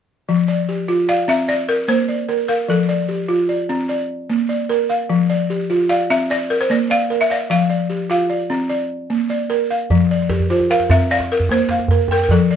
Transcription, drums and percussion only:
9.90 djembe slap soft
9.90 djembe bass medium
10.30 djembe slap medium
10.30 djembe tone medium
10.40 djembe bass soft
10.60 djembe slap soft
10.60 djembe tone soft
10.70 djembe slap soft
10.80 djembe slap medium
10.90 djembe tone medium
10.90 djembe bass medium
11.20 djembe slap medium
11.20 djembe tone medium
11.40 djembe bass medium
11.49 djembe slap soft
11.49 djembe tone medium
11.59 djembe slap soft
11.69 djembe slap medium
11.79 djembe tone medium
11.88 djembe slap soft
11.88 djembe bass medium
12.08 djembe slap soft
12.08 djembe tone medium
12.19 djembe slap medium
12.29 djembe slap soft
12.29 djembe bass medium
12.39 djembe tone medium

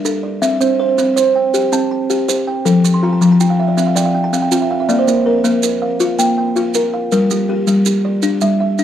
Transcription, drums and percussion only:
0.05 maracas medium
0.43 maracas medium
0.61 maracas medium
0.98 maracas medium
1.17 maracas medium
1.54 maracas medium
1.73 maracas medium
2.10 maracas medium
2.29 maracas medium
2.66 maracas medium
2.85 maracas medium
3.22 maracas medium
3.40 maracas medium
3.78 maracas medium
3.96 maracas medium
4.33 maracas medium
4.52 maracas medium
4.89 maracas medium
5.08 maracas medium
5.45 maracas medium
5.63 maracas medium
6.00 maracas medium
6.19 maracas medium
6.56 maracas medium
6.74 maracas medium
7.12 maracas medium
7.30 maracas medium
7.67 maracas medium
7.86 maracas medium
8.22 maracas medium
8.41 maracas medium
8.78 maracas medium

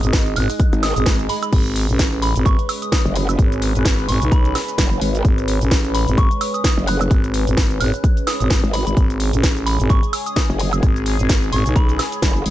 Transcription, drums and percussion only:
0.03 closed hi-hat medium
0.03 shaker medium
0.13 kick loud
0.13 snare loud
0.13 closed hi-hat medium
0.13 shaker medium
0.26 closed hi-hat soft
0.26 shaker soft
0.36 open hi-hat loud
0.50 open hi-hat medium
0.50 shaker medium
0.60 kick loud
0.60 closed hi-hat medium
0.60 shaker medium
0.73 closed hi-hat soft
0.73 shaker soft
0.83 snare medium
0.83 open hi-hat loud
0.83 high woodblock medium
0.96 closed hi-hat medium
0.96 shaker medium
1.06 kick loud
1.06 snare loud
1.06 closed hi-hat medium
1.06 shaker medium
1.19 closed hi-hat soft
1.19 shaker soft
1.29 open hi-hat loud
1.43 closed hi-hat medium
1.43 high woodblock medium
1.43 shaker medium
1.53 kick loud
1.53 closed hi-hat medium
1.53 crash medium
1.53 shaker medium
1.66 closed hi-hat soft
1.66 shaker soft
1.76 open hi-hat loud
1.89 closed hi-hat medium
1.89 shaker medium
1.99 kick loud
1.99 snare loud
1.99 closed hi-hat medium
1.99 shaker medium
2.12 closed hi-hat soft
2.12 shaker soft
2.22 open hi-hat loud
2.36 closed hi-hat medium
2.36 shaker medium
2.46 kick loud
2.46 closed hi-hat medium
2.46 shaker medium
2.59 closed hi-hat soft
2.59 shaker soft
2.69 open hi-hat loud
2.69 high woodblock medium
2.82 closed hi-hat medium
2.82 shaker medium
2.92 kick loud
2.92 snare loud
2.92 closed hi-hat medium
2.92 shaker medium
3.06 shaker soft
3.16 open hi-hat loud
3.29 closed hi-hat medium
3.29 high woodblock medium
3.29 shaker medium
3.39 kick loud
3.39 closed hi-hat medium
3.39 shaker medium
3.52 closed hi-hat soft
3.52 shaker soft
3.62 open hi-hat loud
3.75 closed hi-hat medium
3.75 shaker medium
3.85 kick loud
3.85 snare loud
3.85 closed hi-hat medium
3.85 shaker medium
3.99 closed hi-hat soft
3.99 shaker soft
4.09 open hi-hat loud
4.22 closed hi-hat medium
4.22 shaker medium
4.32 kick loud
4.32 closed hi-hat medium
4.32 shaker medium
4.45 closed hi-hat soft
4.45 shaker soft
4.55 snare medium
4.55 open hi-hat loud
4.55 high woodblock medium
4.68 closed hi-hat medium
4.68 shaker medium
4.78 kick loud
4.78 snare loud
4.78 closed hi-hat medium
4.78 shaker medium
4.92 shaker soft
5.01 open hi-hat loud
5.15 closed hi-hat medium
5.15 shaker medium
5.25 kick loud
5.25 closed hi-hat medium
5.25 shaker medium
5.38 closed hi-hat soft
5.38 shaker soft
5.48 open hi-hat loud
5.61 closed hi-hat medium
5.61 shaker medium
5.71 kick loud
5.71 snare loud
5.71 closed hi-hat medium
5.71 shaker medium
5.85 closed hi-hat soft
5.85 shaker soft
5.95 open hi-hat loud
6.08 closed hi-hat medium
6.08 shaker medium
6.18 kick loud
6.18 closed hi-hat medium
6.18 shaker medium
6.31 closed hi-hat soft
6.31 shaker soft
6.41 open hi-hat loud
6.41 high woodblock medium
6.54 closed hi-hat medium
6.54 shaker medium
6.64 kick loud
6.64 snare loud
6.64 closed hi-hat medium
6.64 shaker medium
6.78 shaker soft
6.87 open hi-hat loud
7.01 closed hi-hat medium
7.01 high woodblock medium
7.01 shaker medium
7.11 kick loud
7.11 closed hi-hat medium
7.11 shaker medium
7.24 closed hi-hat soft
7.24 shaker soft
7.34 open hi-hat loud
7.47 closed hi-hat medium
7.47 shaker medium
7.57 kick loud
7.57 snare loud
7.57 closed hi-hat medium
7.57 shaker medium
7.71 closed hi-hat soft
7.71 shaker soft
7.81 open hi-hat loud
7.94 closed hi-hat medium
7.94 shaker medium
8.04 kick loud
8.04 closed hi-hat medium
8.04 shaker medium
8.17 closed hi-hat soft
8.17 shaker soft
8.27 snare medium
8.27 open hi-hat loud
8.27 high woodblock medium
8.40 closed hi-hat soft
8.40 shaker medium
8.50 kick loud
8.50 snare loud
8.50 closed hi-hat medium
8.50 shaker medium
8.64 shaker soft
8.74 open hi-hat loud
8.87 closed hi-hat soft
8.87 shaker medium
8.97 kick loud
8.97 closed hi-hat medium
8.97 shaker medium
9.10 closed hi-hat soft
9.10 shaker soft
9.20 open hi-hat loud
9.33 closed hi-hat medium
9.33 shaker medium
9.43 kick loud
9.43 snare loud
9.43 closed hi-hat medium
9.43 shaker medium
9.57 closed hi-hat soft
9.57 shaker soft
9.67 open hi-hat loud
9.80 closed hi-hat soft
9.80 shaker medium
9.90 kick loud
9.90 closed hi-hat medium
9.90 shaker medium
10.03 closed hi-hat soft
10.03 shaker soft
10.13 open hi-hat loud
10.13 high woodblock medium
10.26 closed hi-hat medium
10.26 shaker medium
10.36 kick loud
10.36 snare loud
10.36 closed hi-hat medium
10.36 shaker medium
10.50 shaker soft
10.60 open hi-hat loud
10.73 closed hi-hat medium
10.73 high woodblock medium
10.73 shaker medium
10.83 kick loud
10.83 closed hi-hat medium
10.83 shaker medium
10.96 closed hi-hat soft
10.96 shaker soft
11.06 open hi-hat loud
11.19 closed hi-hat medium
11.19 shaker medium
11.29 kick loud
11.29 snare loud
11.29 closed hi-hat medium
11.29 shaker medium
11.43 closed hi-hat soft
11.43 shaker soft
11.53 open hi-hat loud
11.66 closed hi-hat medium
11.66 shaker medium
11.76 kick loud
11.76 closed hi-hat medium
11.76 shaker medium
11.89 closed hi-hat soft
11.89 shaker soft
11.99 snare medium
11.99 open hi-hat loud
11.99 high woodblock medium
12.12 closed hi-hat medium
12.12 shaker medium
12.22 kick loud
12.22 snare loud
12.22 closed hi-hat medium
12.22 shaker medium
12.36 shaker soft
12.46 open hi-hat loud

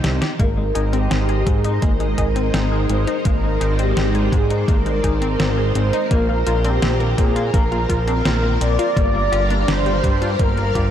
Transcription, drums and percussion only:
0.04 snare loud
0.04 closed hi-hat medium
0.22 snare medium
0.22 closed hi-hat medium
0.39 kick loud
0.39 closed hi-hat medium
0.75 closed hi-hat medium
0.93 closed hi-hat medium
1.11 snare loud
1.11 closed hi-hat medium
1.29 closed hi-hat soft
1.47 kick loud
1.47 closed hi-hat medium
1.64 closed hi-hat medium
1.82 kick loud
1.82 closed hi-hat medium
2.00 closed hi-hat soft
2.18 kick medium
2.18 closed hi-hat medium
2.36 closed hi-hat medium
2.54 snare loud
2.54 closed hi-hat medium
2.89 closed hi-hat medium
3.07 closed hi-hat medium
3.25 kick loud
3.25 closed hi-hat medium
3.61 closed hi-hat medium
3.79 closed hi-hat medium
3.97 snare loud
3.97 closed hi-hat medium
4.15 closed hi-hat soft
4.32 kick loud
4.32 closed hi-hat medium
4.50 closed hi-hat medium
4.68 kick loud
4.68 closed hi-hat medium
4.86 closed hi-hat soft
5.04 kick medium
5.04 closed hi-hat medium
5.22 closed hi-hat medium
5.40 snare loud
5.40 closed hi-hat medium
5.75 closed hi-hat medium
5.93 closed hi-hat medium
6.11 kick loud
6.11 closed hi-hat medium
6.47 closed hi-hat medium
6.65 closed hi-hat medium
6.82 snare loud
6.82 closed hi-hat medium
7.00 closed hi-hat soft
7.18 kick loud
7.18 closed hi-hat medium
7.36 closed hi-hat medium
7.54 kick loud
7.54 closed hi-hat medium
7.72 closed hi-hat soft
7.90 kick medium
7.90 closed hi-hat medium
8.08 closed hi-hat medium
8.25 snare loud
8.25 closed hi-hat medium
8.61 closed hi-hat medium
8.79 closed hi-hat medium
8.97 kick loud
8.97 closed hi-hat medium
9.33 closed hi-hat medium
9.50 closed hi-hat medium
9.68 snare loud
9.68 closed hi-hat medium
9.86 closed hi-hat soft
10.04 kick loud
10.04 closed hi-hat medium
10.22 closed hi-hat medium
10.39 kick loud
10.39 closed hi-hat medium
10.57 closed hi-hat soft
10.75 kick medium
10.75 closed hi-hat medium

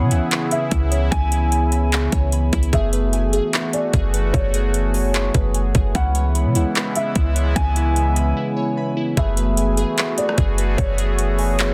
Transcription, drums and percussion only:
0.11 closed hi-hat medium
0.31 clap loud
0.31 closed hi-hat medium
0.51 closed hi-hat medium
0.71 kick medium
0.71 closed hi-hat medium
0.92 closed hi-hat medium
1.12 kick loud
1.12 closed hi-hat medium
1.32 closed hi-hat medium
1.52 closed hi-hat medium
1.72 closed hi-hat medium
1.92 clap loud
1.92 closed hi-hat medium
2.12 kick medium
2.12 closed hi-hat medium
2.32 closed hi-hat medium
2.53 kick loud
2.53 closed hi-hat medium
2.63 closed hi-hat medium
2.73 kick loud
2.73 closed hi-hat medium
2.93 closed hi-hat medium
3.13 closed hi-hat medium
3.33 closed hi-hat medium
3.53 clap loud
3.53 closed hi-hat medium
3.73 closed hi-hat medium
3.93 kick medium
3.93 closed hi-hat medium
4.14 closed hi-hat medium
4.34 kick loud
4.34 closed hi-hat medium
4.54 closed hi-hat medium
4.74 closed hi-hat medium
4.94 open hi-hat medium
5.14 clap loud
5.14 closed hi-hat medium
5.34 kick medium
5.34 closed hi-hat medium
5.54 closed hi-hat medium
5.75 kick loud
5.75 closed hi-hat medium
5.95 kick loud
5.95 closed hi-hat medium
6.15 closed hi-hat medium
6.35 closed hi-hat medium
6.55 closed hi-hat medium
6.75 clap loud
6.75 closed hi-hat medium
6.95 closed hi-hat medium
7.15 kick medium
7.15 closed hi-hat medium
7.36 closed hi-hat medium
7.56 kick loud
7.56 closed hi-hat medium
7.76 closed hi-hat medium
7.96 closed hi-hat medium
8.16 closed hi-hat medium
9.17 kick loud
9.17 closed hi-hat medium
9.37 closed hi-hat medium
9.57 closed hi-hat medium
9.77 closed hi-hat medium
9.98 clap loud
9.98 closed hi-hat medium
10.18 closed hi-hat medium
10.29 cross-stick medium
10.38 kick medium
10.38 closed hi-hat medium
10.58 closed hi-hat medium
10.78 kick loud
10.78 closed hi-hat medium
10.98 closed hi-hat medium
11.19 closed hi-hat medium
11.39 open hi-hat medium
11.59 clap loud
11.59 closed hi-hat medium

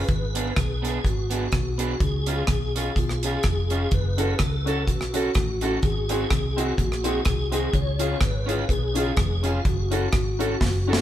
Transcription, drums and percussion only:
0.08 kick loud
0.08 closed hi-hat medium
0.35 closed hi-hat loud
0.56 kick loud
0.56 cross-stick loud
0.56 closed hi-hat medium
0.85 closed hi-hat medium
1.05 kick loud
1.05 closed hi-hat medium
1.31 closed hi-hat loud
1.52 kick loud
1.52 cross-stick medium
1.52 closed hi-hat medium
1.79 closed hi-hat medium
2.00 kick loud
2.00 closed hi-hat medium
2.26 closed hi-hat loud
2.47 kick loud
2.47 cross-stick loud
2.47 closed hi-hat medium
2.76 closed hi-hat medium
2.96 kick loud
2.96 closed hi-hat medium
3.09 cross-stick medium
3.23 closed hi-hat loud
3.43 kick loud
3.43 cross-stick medium
3.43 closed hi-hat medium
3.70 closed hi-hat medium
3.91 kick loud
3.91 closed hi-hat medium
4.18 closed hi-hat loud
4.39 kick loud
4.39 cross-stick loud
4.39 closed hi-hat loud
4.67 closed hi-hat medium
4.88 kick medium
4.88 closed hi-hat medium
5.01 cross-stick medium
5.14 closed hi-hat loud
5.35 kick loud
5.35 cross-stick loud
5.35 closed hi-hat medium
5.61 closed hi-hat medium
5.83 kick loud
5.83 closed hi-hat medium
6.09 closed hi-hat loud
6.31 kick loud
6.31 cross-stick loud
6.31 closed hi-hat medium
6.58 closed hi-hat medium
6.78 kick medium
6.78 closed hi-hat medium
6.92 cross-stick medium
7.04 closed hi-hat loud
7.25 kick loud
7.25 cross-stick loud
7.25 closed hi-hat medium
7.52 closed hi-hat medium
7.74 kick loud
7.74 closed hi-hat medium
7.99 closed hi-hat loud
8.21 kick loud
8.21 cross-stick loud
8.21 closed hi-hat medium
8.49 closed hi-hat medium
8.69 kick medium
8.69 closed hi-hat medium
8.95 closed hi-hat loud
9.17 kick loud
9.17 cross-stick loud
9.17 closed hi-hat medium
9.44 closed hi-hat medium
9.65 kick loud
9.65 closed hi-hat medium
9.92 closed hi-hat medium
10.13 kick loud
10.13 cross-stick loud
10.13 closed hi-hat medium
10.40 closed hi-hat medium
10.61 kick loud
10.61 snare medium
10.93 snare medium

